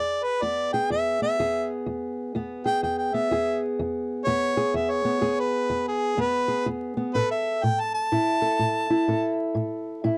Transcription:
Already playing: E2 G#4 D5
0.23 B4
0.42 E2 B3 D5
0.73 G#4 G5
0.90 E2 E5
1.22 B3 E5
1.40 E2 G#4
1.86 E2
2.35 E2 B3
2.65 G#4 G5
2.83 E2 G5
2.98 G5
3.14 B3 E5
3.31 E2 G#4
3.79 E2
4.25 E2 B3 C#5
4.57 G#4
4.74 E2 E5
4.91 C#5
5.05 B3
5.21 E2 G#4
5.40 B4
5.70 E2
5.88 G#4
6.17 E2 B3 B4
6.48 G#4
6.66 E2
6.97 B3
7.14 A2 A4 B4
7.31 E5
7.63 A2 G5
7.80 A5
7.94 A5
8.12 A2 E4
8.42 A4
8.59 A2
8.90 E4
9.08 A2 A4
9.55 A2
10.04 A2 E4

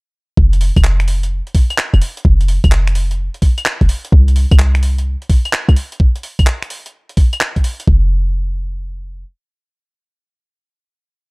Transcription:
0.37 F1, kick
0.53 closed hi-hat
0.61 open hi-hat
0.76 F1, kick, closed hi-hat, claves
0.84 clap
1.00 finger snap, closed hi-hat
1.08 open hi-hat
1.23 closed hi-hat
1.47 closed hi-hat
1.55 kick, open hi-hat
1.70 closed hi-hat, claves
1.78 clap
1.94 F1, closed hi-hat, claves
2.02 open hi-hat
2.17 closed hi-hat
2.25 F1, kick
2.41 closed hi-hat
2.48 open hi-hat
2.64 F1, kick, closed hi-hat, claves
2.72 clap
2.87 finger snap, closed hi-hat
2.95 open hi-hat
3.11 closed hi-hat
3.34 closed hi-hat
3.42 kick, open hi-hat
3.58 closed hi-hat, claves
3.66 clap
3.81 F1, kick, closed hi-hat
3.89 open hi-hat
4.05 closed hi-hat
4.12 C2, kick
4.28 closed hi-hat
4.36 open hi-hat
4.51 C2, kick, closed hi-hat, claves
4.59 clap
4.75 finger snap, closed hi-hat
4.83 open hi-hat
4.98 closed hi-hat
5.22 closed hi-hat
5.30 kick, open hi-hat
5.45 closed hi-hat, claves
5.53 clap
5.69 C2, closed hi-hat, claves
5.76 open hi-hat
5.92 closed hi-hat
6.00 kick
6.16 closed hi-hat
6.23 open hi-hat
6.39 kick, closed hi-hat, claves
6.47 clap
6.62 finger snap, closed hi-hat
6.70 open hi-hat
6.86 closed hi-hat
7.09 closed hi-hat
7.17 kick, open hi-hat
7.33 closed hi-hat, claves
7.41 clap
7.56 kick, closed hi-hat
7.64 open hi-hat
7.80 closed hi-hat
7.87 F1, kick

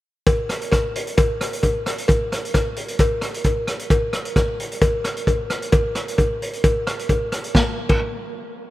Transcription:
0.27 kick, closed hi-hat, cowbell
0.49 cross-stick, closed hi-hat
0.61 closed hi-hat
0.72 kick, cross-stick, closed hi-hat, cowbell
0.95 closed hi-hat
1.07 closed hi-hat
1.17 kick, closed hi-hat, cowbell
1.41 cross-stick, closed hi-hat
1.53 closed hi-hat
1.63 kick, closed hi-hat, cowbell
1.86 cross-stick, closed hi-hat
1.98 closed hi-hat
2.08 kick, closed hi-hat, cowbell
2.32 cross-stick, closed hi-hat
2.45 closed hi-hat
2.54 kick, cross-stick, closed hi-hat, cowbell
2.76 closed hi-hat
2.88 closed hi-hat
2.99 kick, closed hi-hat, cowbell
3.21 cross-stick, closed hi-hat
3.34 closed hi-hat
3.44 kick, closed hi-hat, cowbell
3.67 cross-stick, closed hi-hat
3.79 closed hi-hat
3.90 kick, closed hi-hat, cowbell
4.13 cross-stick, closed hi-hat
4.25 closed hi-hat
4.36 kick, cross-stick, closed hi-hat, cowbell
4.60 closed hi-hat
4.72 closed hi-hat
4.82 kick, closed hi-hat, cowbell
5.04 cross-stick, closed hi-hat
5.17 closed hi-hat
5.27 kick, closed hi-hat, cowbell
5.50 cross-stick, closed hi-hat
5.62 closed hi-hat
5.72 kick, closed hi-hat, cowbell
5.95 cross-stick, closed hi-hat
6.08 closed hi-hat
6.18 kick, closed hi-hat, cowbell
6.42 closed hi-hat
6.53 closed hi-hat
6.64 kick, closed hi-hat, cowbell
6.87 cross-stick, closed hi-hat
6.99 closed hi-hat
7.09 kick, closed hi-hat, cowbell
7.32 cross-stick, closed hi-hat
7.44 closed hi-hat
7.55 kick, snare, cowbell
7.89 kick, crash, cowbell

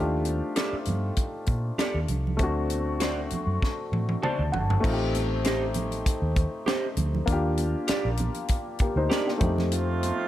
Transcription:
Already playing: D#2 A3 D4 D#4 F4 G4 C5
0.25 closed hi-hat, high conga
0.56 G4 A4 D5, snare, closed hi-hat, muted conga
0.73 muted fingered electric bass stroke
0.85 G2, closed hi-hat, muted conga, high conga, low conga
1.16 kick, closed hi-hat
1.46 A#2, kick, closed hi-hat
1.78 G4 A4 D5, snare, closed hi-hat, high conga
1.94 D#2
2.08 C2, closed hi-hat, low conga
2.27 low conga
2.37 D2 A3 C4 D4, kick, closed hi-hat
2.43 F#4
2.70 closed hi-hat, high conga
3.00 F#4 C5 D5, snare, closed hi-hat, muted conga
3.30 muted fingered electric bass stroke, closed hi-hat, high conga, low conga
3.47 F#2
3.62 kick, snare, muted conga
3.92 A2, high tom
4.09 high tom
4.23 F#4 C5 D5 A5, mid tom, muted conga, high conga
4.39 D2
4.52 G1 F#5, floor tom, low conga
4.70 floor tom, low conga
4.80 A1 A3 C4 D#4, kick
4.84 F4, crash, muted conga
4.93 G4
5.15 C5, closed hi-hat, muted conga, high conga
5.44 G4 C5 D#5, snare, closed hi-hat, muted conga
5.74 closed hi-hat, high conga, low conga
5.92 closed hi-hat
6.06 muted fingered electric bass stroke, kick, closed hi-hat, muted conga
6.22 D#2
6.36 kick, closed hi-hat
6.66 G4 C5 D#5, snare, closed hi-hat, high conga
6.97 D2, closed hi-hat, muted conga, low conga
7.15 low conga
7.26 D#2 A#3 D4, kick, closed hi-hat
7.30 F4 G4
7.57 closed hi-hat, muted conga, high conga
7.88 G4 A#4 D5, muted fingered electric bass stroke, snare, closed hi-hat
8.05 A#1
8.17 closed hi-hat, muted conga, high conga, low conga
8.34 closed hi-hat
8.48 kick, closed hi-hat, muted conga
8.79 A#3 G4, muted fingered electric bass stroke, kick, closed hi-hat
8.96 D2 D#4 C5
9.10 D4 G4 A#4 D5, snare, closed hi-hat, high conga
9.27 A#3 G4, snare
9.38 F2 A3 C4 D#4, kick, closed hi-hat
9.42 G4, low conga
9.58 snare, low conga
9.72 F3 A3 C4 F4, closed hi-hat
10.03 closed hi-hat, high conga

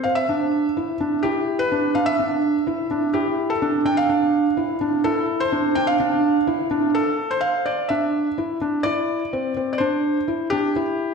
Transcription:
0.04 C4 F5
0.15 E5
0.29 D4
0.77 E4
1.01 D4
1.23 E4 G4
1.59 B4
1.72 D4
1.95 D4 F5
2.06 E5
2.19 D4
2.67 E4
2.91 D4
3.14 E4 G4
3.50 A4
3.62 D4
3.85 D4 G5
3.97 F5
4.09 D4
4.57 E4
4.81 D4
5.04 E4 A4
5.40 C5
5.52 D4
5.75 D4 G5
5.87 F5
6.00 D4
6.47 E4
6.71 D4
6.95 A4
7.31 C5
7.41 F5
7.66 D5
7.89 D4 E5
8.38 E4
8.61 D4
8.83 E4 D5
9.33 C4
9.57 C4
9.73 D5
9.78 D4 C5
10.28 E4
10.50 D4 G4
10.76 E4

